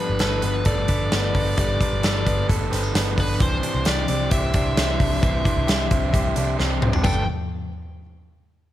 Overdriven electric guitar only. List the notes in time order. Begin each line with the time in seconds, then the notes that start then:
Already playing: B4
0.00 D4 A4
0.20 A3 D4 A4 B4
0.42 D4 A4 B4
0.64 G3 A3 D4 A4 B4
0.88 D4 A4 B4
1.12 A3 D4 A4 B4
1.35 D4 A4 B4
1.57 G3 A3 D4 A4 B4
1.80 D4 A4 B4
2.02 A3 D4 A4 B4
2.24 D4 A4 B4
2.48 G3 A3 D4 A4 B4
2.70 D4 A4 B4
2.92 A3 D4 A4 B4
3.16 D4 A4 B4
3.38 C3 E3 C4 D4 G4
3.61 C4 D4 G4
3.85 E3 C4 D4 G4
4.08 C4 D4 G4
4.32 C3 E3 C4 D4 G4
4.54 C4 D4 G4
4.77 E3 C4 D4 G4
4.99 C4 D4 G4
5.22 C3 E3 C4 D4 G4
5.44 C4 D4 G4
5.67 E3 C4 D4 G4
5.90 C4 D4 G4
6.13 C3 E3 C4 D4 G4
6.36 C4 D4 G4
6.58 E3 C4 D4 G4
6.81 C4 D4 G4
7.04 G3 A3 D4 G4 B4